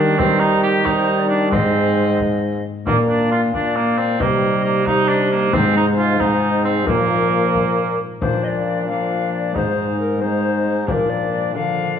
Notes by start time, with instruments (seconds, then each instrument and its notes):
Already playing: bassoon D#3, harp D#3 A#3 D#4, trombone G3, cor anglais D4, recorder A#4
0.16 trombone G3, harp C4 D#4, cor anglais C4, recorder D5, frame drum
0.24 recorder C5
0.40 cor anglais D#4
0.63 cor anglais G4
0.84 trombone G3, harp C4 D#4, cor anglais D#4, recorder D5, frame drum
0.89 recorder C5
1.19 recorder D5
1.29 cor anglais D4
1.49 bassoon G#2, harp G#2 G#3 C4 D#4, trombone G#3, cor anglais C4, recorder D#5, frame drum
2.20 frame drum
2.85 bassoon A#2, harp A#2 D4, cor anglais A#3, trombone A#3, recorder D5, frame drum
3.09 cor anglais D4
3.31 cor anglais F4
3.53 trombone A#3, cor anglais D4, recorder D5, frame drum
3.76 cor anglais A#3
3.98 cor anglais C4
4.18 harp C3 C4 D#4, bassoon C3, trombone G3, cor anglais A#3, recorder D#5, frame drum
4.65 cor anglais A#3
4.86 trombone G3, cor anglais D#4, recorder F5, frame drum
4.92 recorder D#5
5.09 cor anglais D4
5.31 cor anglais A#3
5.49 bassoon G#2, harp G#3 C4 D#4, trombone G#3, recorder C5, frame drum
5.54 harp G#2, cor anglais C4
5.77 cor anglais D#4
5.99 cor anglais F4
6.17 harp G#3 C4 D#4, trombone G#3, cor anglais D#4, recorder C5, frame drum
6.65 cor anglais C4
6.85 bassoon A#2, harp A#2 A#3 D4, trombone F3, cor anglais A#3, recorder A#4, frame drum
7.55 frame drum
8.20 bassoon A#2, harp A#2 A#3 D4, trombone F3, cor anglais D4, recorder C5, frame drum
8.44 recorder D#5
8.48 recorder D5
8.66 recorder D5
8.87 trombone F3, harp A#3 D4, cor anglais D4, recorder F5
9.33 recorder D5
9.52 bassoon G#2, harp G#2 G#3 C4 D#4, trombone G#3, cor anglais D#4, recorder C5, frame drum
9.99 recorder A#4
10.18 harp G#3 C4 D#4, recorder C5
10.22 trombone G#3, cor anglais D#4
10.86 bassoon A#2, harp A#2 D4 A#4, trombone F3, cor anglais D4, recorder C5, frame drum
10.92 recorder A#4
11.09 recorder D5
11.33 recorder D5
11.53 bassoon D3, harp D3 D4 A#4, trombone F3, cor anglais D4, recorder F5